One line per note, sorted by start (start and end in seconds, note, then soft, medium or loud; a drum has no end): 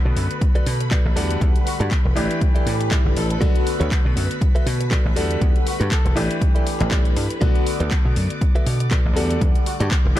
0.00 1.12 D3 medium
0.00 1.12 A3 medium
0.00 1.12 B3 medium
0.00 1.12 F#4 loud
0.00 7.43 B4 medium
0.00 7.43 B5 medium
0.05 0.13 B2 loud
0.05 muted clean electric guitar stroke medium
0.16 0.27 F#2 medium
0.16 muted clean electric guitar stroke soft
0.16 open hi-hat loud
0.31 closed hi-hat soft
0.41 kick loud
0.41 closed hi-hat medium
0.55 0.66 F#4 loud
0.55 0.66 A4 loud
0.55 0.66 B4 loud
0.55 0.67 D5 loud
0.55 closed hi-hat soft
0.66 0.99 B2 medium
0.66 open hi-hat loud
0.80 muted clean electric guitar stroke soft
0.80 closed hi-hat medium
0.91 1.05 F#4 loud
0.91 1.05 A4 medium
0.91 1.05 B4 medium
0.91 1.06 D5 loud
0.91 kick loud
0.91 clap loud
0.91 closed hi-hat medium
1.05 1.13 A1 medium
1.16 1.35 E2 medium
1.16 2.12 D3 medium
1.16 2.12 G3 medium
1.16 2.12 A3 medium
1.16 1.57 F#4 medium
1.16 1.58 G4 medium
1.16 1.58 A4 loud
1.16 1.58 D5 loud
1.16 2.12 F#5 medium
1.16 open hi-hat loud
1.31 closed hi-hat medium
1.41 1.52 E2 loud
1.41 kick loud
1.41 closed hi-hat medium
1.56 closed hi-hat soft
1.66 1.75 F#4 medium
1.66 muted clean electric guitar stroke soft
1.66 open hi-hat loud
1.80 1.88 G2 loud
1.80 1.87 F#4 medium
1.80 1.91 F#4 medium
1.80 1.91 G4 medium
1.80 1.91 A4 medium
1.80 1.91 D5 loud
1.80 closed hi-hat medium
1.91 kick loud
1.91 clap loud
1.91 closed hi-hat medium
2.05 2.13 E1 medium
2.05 muted clean electric guitar stroke medium
2.16 2.26 A1 medium
2.16 3.37 E3 medium
2.16 3.37 A3 medium
2.16 3.37 D4 medium
2.16 2.47 E4 loud
2.16 2.47 G4 medium
2.16 3.37 G4 loud
2.16 2.47 A4 medium
2.16 2.47 D5 loud
2.16 open hi-hat loud
2.31 closed hi-hat medium
2.41 kick loud
2.41 closed hi-hat medium
2.55 2.66 E4 loud
2.55 2.66 G4 loud
2.55 2.66 A4 loud
2.55 2.66 D5 loud
2.55 muted slap bass stroke soft
2.55 closed hi-hat soft
2.66 2.99 A2 medium
2.66 open hi-hat loud
2.80 muted clean electric guitar stroke soft
2.80 closed hi-hat medium
2.91 3.05 E4 medium
2.91 3.05 G4 medium
2.91 3.05 A4 medium
2.91 3.05 D5 medium
2.91 kick loud
2.91 clap loud
2.91 closed hi-hat medium
3.05 3.13 G1 medium
3.16 3.35 A1 medium
3.16 3.25 A4 medium
3.16 muted clean electric guitar stroke soft
3.16 open hi-hat loud
3.30 3.38 A4 medium
3.30 closed hi-hat medium
3.41 3.52 B1 loud
3.41 5.12 D3 medium
3.41 5.12 A3 medium
3.41 5.12 B3 medium
3.41 3.55 F#4 loud
3.41 5.12 F#4 loud
3.41 3.55 A4 loud
3.41 3.55 B4 loud
3.41 3.55 D5 loud
3.41 kick loud
3.41 closed hi-hat medium
3.56 closed hi-hat soft
3.66 muted clean electric guitar stroke soft
3.66 open hi-hat loud
3.80 3.89 D2 loud
3.80 3.91 F#4 medium
3.80 3.91 A4 medium
3.80 3.91 B4 medium
3.80 3.91 C#5 loud
3.80 closed hi-hat medium
3.91 kick loud
3.91 clap loud
3.91 closed hi-hat medium
4.05 4.14 B2 loud
4.05 muted clean electric guitar stroke medium
4.16 4.27 F#2 medium
4.16 muted clean electric guitar stroke soft
4.16 open hi-hat loud
4.31 closed hi-hat medium
4.41 kick loud
4.41 closed hi-hat medium
4.55 4.66 F#4 loud
4.55 4.66 A4 loud
4.55 4.66 B4 loud
4.55 4.66 E5 loud
4.55 closed hi-hat soft
4.66 4.99 B2 medium
4.66 open hi-hat loud
4.80 muted clean electric guitar stroke soft
4.80 closed hi-hat medium
4.91 5.05 F#4 medium
4.91 5.05 A4 medium
4.91 5.05 B4 medium
4.91 5.05 D5 loud
4.91 kick loud
4.91 clap loud
4.91 closed hi-hat medium
5.05 5.13 A1 medium
5.16 5.36 E2 medium
5.16 6.12 D3 medium
5.16 6.12 G3 medium
5.16 6.12 A3 medium
5.16 5.57 F#4 loud
5.16 5.57 G4 medium
5.16 5.58 A4 medium
5.16 5.58 D5 loud
5.16 6.12 F#5 medium
5.16 open hi-hat loud
5.31 closed hi-hat medium
5.41 5.52 E2 loud
5.41 kick loud
5.41 closed hi-hat medium
5.56 closed hi-hat soft
5.66 5.76 F#4 medium
5.66 muted clean electric guitar stroke soft
5.66 open hi-hat loud
5.80 5.88 G2 loud
5.80 5.91 F#4 loud
5.80 5.87 F#4 medium
5.80 5.91 G4 medium
5.80 5.91 A4 medium
5.80 5.92 B4 loud
5.80 closed hi-hat medium
5.91 6.22 A4 loud
5.91 kick loud
5.91 clap loud
5.91 closed hi-hat medium
6.05 6.13 E1 loud
6.05 muted clean electric guitar stroke medium
6.05 closed hi-hat soft
6.16 6.27 A1 medium
6.16 7.37 E3 loud
6.16 7.37 A3 medium
6.16 7.37 D4 medium
6.16 6.47 E4 loud
6.16 6.47 G4 medium
6.16 7.37 G4 loud
6.16 6.47 A4 medium
6.16 6.47 D5 loud
6.16 open hi-hat loud
6.31 closed hi-hat medium
6.41 kick loud
6.41 closed hi-hat medium
6.55 6.66 E4 loud
6.55 6.66 G4 loud
6.55 6.66 A4 loud
6.55 6.67 D5 loud
6.55 closed hi-hat soft
6.67 open hi-hat loud
6.80 7.16 A1 medium
6.80 muted clean electric guitar stroke soft
6.80 clap soft
6.80 closed hi-hat medium
6.91 7.05 E4 medium
6.91 7.05 G4 medium
6.91 7.05 A4 medium
6.91 7.05 D5 loud
6.91 kick loud
6.91 clap loud
6.91 closed hi-hat medium
7.05 closed hi-hat soft
7.16 7.27 G2 medium
7.16 muted clean electric guitar stroke soft
7.16 open hi-hat loud
7.30 closed hi-hat medium
7.41 7.52 B1 loud
7.41 9.12 D3 medium
7.41 9.12 A3 medium
7.41 9.12 B3 medium
7.41 7.55 F#4 loud
7.41 9.12 F#4 loud
7.41 7.55 A4 loud
7.41 7.55 B4 medium
7.41 10.20 D5 medium
7.41 7.55 D5 loud
7.41 10.20 D6 medium
7.41 kick loud
7.41 closed hi-hat medium
7.55 closed hi-hat soft
7.66 muted clean electric guitar stroke soft
7.66 open hi-hat loud
7.80 7.88 D2 loud
7.80 7.91 F#4 medium
7.80 7.91 A4 medium
7.80 7.91 B4 medium
7.80 7.91 D5 loud
7.80 closed hi-hat medium
7.91 kick loud
7.91 clap loud
7.91 closed hi-hat medium
8.05 8.13 B2 loud
8.05 muted clean electric guitar stroke medium
8.16 8.27 F#2 medium
8.16 muted clean electric guitar stroke soft
8.16 open hi-hat loud
8.30 closed hi-hat medium
8.41 kick loud
8.41 closed hi-hat medium
8.55 8.66 F#4 loud
8.55 8.66 A4 loud
8.55 8.66 B4 loud
8.55 8.66 E5 loud
8.55 closed hi-hat soft
8.66 8.99 B2 medium
8.66 open hi-hat loud
8.80 muted clean electric guitar stroke soft
8.80 closed hi-hat medium
8.91 9.05 F#4 medium
8.91 9.05 A4 medium
8.91 9.05 B4 medium
8.91 9.05 D5 medium
8.91 kick loud
8.91 clap loud
8.91 closed hi-hat medium
9.05 9.13 A1 medium
9.16 9.35 E2 medium
9.16 10.12 D3 medium
9.16 10.12 G3 medium
9.16 10.12 A3 medium
9.16 9.57 F#4 medium
9.16 9.57 G4 medium
9.16 9.58 A4 medium
9.16 9.58 D5 loud
9.16 10.12 F#5 medium
9.16 open hi-hat loud
9.30 closed hi-hat medium
9.41 9.52 E2 loud
9.41 kick loud
9.41 closed hi-hat medium
9.55 closed hi-hat soft
9.66 9.75 F#4 medium
9.66 muted clean electric guitar stroke soft
9.66 open hi-hat loud
9.80 9.88 G2 loud
9.80 9.87 F#4 medium
9.80 9.91 F#4 medium
9.80 9.91 G4 medium
9.80 9.91 A4 medium
9.80 9.91 D5 loud
9.80 closed hi-hat medium
9.91 kick loud
9.91 clap loud
9.91 closed hi-hat medium
10.05 10.13 E1 loud
10.05 muted clean electric guitar stroke medium
10.15 10.20 A1 medium
10.15 10.20 E3 loud
10.15 10.20 A3 medium
10.15 10.20 D4 medium
10.15 10.20 E4 medium
10.15 10.20 G4 medium
10.15 10.20 A4 medium
10.15 open hi-hat loud